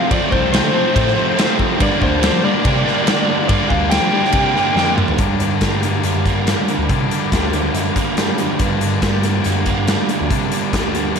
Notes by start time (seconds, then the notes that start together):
Already playing: F3 A3 C4 F4 A4 F5
0.10 F2 C3 F3 A3 C4 D5, kick, ride bell
0.31 C2 F3 A3 C4 C5, kick
0.52 C3 F3 A3 C4 C5, snare, ride bell
0.63 D3
0.72 F3 A3 C4
0.93 F2 A2 C3 F3 A3 C4, kick, ride bell
1.07 snare
1.14 F3 A3 C4
1.36 C3 F3 A3 C4, snare, ride bell
1.59 kick
1.78 G2 D3 G3 A#3 D4 G4 A#4, kick, ride bell
1.82 D5
1.99 D2 G3 A#3 D4, kick
2.03 C5
2.21 D3 G3 A#3 D4, snare, ride bell
2.33 F3
2.42 G3 A#3 D4 D5
2.63 G2 C3 D3 G3 A#3 D4, kick, ride bell
2.85 G3 A#3 D4, snare
3.05 D3 G3 A#3 D4, snare, ride bell
3.48 G2 D3 G3 A#3 D4 D5, kick, ride bell
3.69 D2 G3 A#3 D4 F5, kick
3.90 D3 G3 A#3 D4 G5, snare, ride bell
4.01 F3
4.12 G3 A#3 D4
4.25 snare
4.32 G2 C3 D3 G3 A#3 D4, kick, ride bell
4.55 G3 A#3 D4, snare
4.75 F2 D3 G3, snare
4.79 A#3 D4
4.96 G2, mid tom
5.08 floor tom
5.17 G2 D3 G3 D4 G4 A#4, kick, closed hi-hat
5.21 A#3 D4
5.40 D3, closed hi-hat
5.61 G2 G3, kick, snare, closed hi-hat
5.83 D3, closed hi-hat
6.03 F#2 G3, closed hi-hat
6.26 A#3, kick, closed hi-hat
6.35 G2
6.47 G3, snare, closed hi-hat
6.68 D3, closed hi-hat
6.78 D2
6.89 G2 C3 D3 G3 A#3 D4, kick, closed hi-hat
7.11 D3, closed hi-hat
7.32 D2 G3, kick, snare, closed hi-hat
7.53 D3, snare, closed hi-hat
7.74 F#2 G3, closed hi-hat
7.96 A#3, kick, closed hi-hat
8.17 G3, snare, closed hi-hat
8.28 F#2
8.38 D3, closed hi-hat
8.58 G2 D3 G3 A#3 D4 G4, kick, closed hi-hat
8.81 D3, closed hi-hat
9.02 G2 G3, kick, snare, closed hi-hat
9.23 D3, snare, closed hi-hat
9.44 F#2 G3, closed hi-hat
9.66 A#3, kick, closed hi-hat
9.77 G2
9.87 G3, snare, closed hi-hat
10.09 D3, closed hi-hat
10.20 D2
10.30 G2 C3 D3 G3 A#3 D4, kick, closed hi-hat
10.52 D3, closed hi-hat
10.73 D2 G3, kick, snare, closed hi-hat
10.95 D3, closed hi-hat
11.16 F#2, closed hi-hat